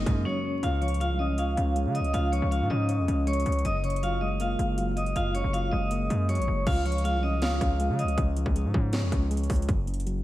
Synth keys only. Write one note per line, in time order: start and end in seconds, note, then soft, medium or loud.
0.00 0.64 F#2 medium
0.00 0.25 C#3 medium
0.00 0.25 F#3 loud
0.00 0.06 G#3 loud
0.00 0.65 A#3 medium
0.06 0.63 G#3 medium
0.25 0.63 F#3 medium
0.63 1.57 C#3 medium
0.82 1.76 F3 medium
1.01 1.75 G#3 medium
1.20 1.56 C#4 medium
1.38 2.33 C#5 medium
1.57 2.52 C#4 medium
1.76 2.50 G#3 medium
2.14 3.08 C#3 medium
2.33 3.27 F3 medium
2.52 3.26 G#3 medium
2.71 3.07 C#4 medium
2.89 3.65 C#5 medium
3.08 3.65 C#4 medium
3.27 3.65 G#3 medium
3.65 4.59 F#2 medium
3.84 4.78 C#3 medium
4.03 4.77 F#3 medium
4.21 4.58 G#3 medium
4.40 5.35 A#3 medium
4.59 5.53 G#3 medium
4.78 5.52 F#3 loud
5.16 6.10 F#2 medium
5.35 6.29 C#3 medium
5.54 6.28 F#3 medium
5.72 6.09 G#3 medium
5.91 6.67 A#3 medium
6.10 6.67 G#3 medium
6.29 6.67 F#3 medium
6.67 7.61 C#3 medium
6.85 7.80 F3 medium
7.04 7.79 G#3 medium
7.24 7.60 C#4 medium
7.42 8.37 C#5 medium
7.61 8.55 C#4 medium
7.80 8.54 G#3 medium
8.18 9.12 C#3 medium
8.37 9.31 F3 medium
8.55 9.30 G#3 medium
8.74 9.11 C#4 loud
8.93 9.68 C#5 medium
9.12 9.69 C#4 medium
9.31 9.69 G#3 medium
9.69 10.24 F#2 medium
9.87 10.24 C#3 medium
10.06 10.24 F#3 medium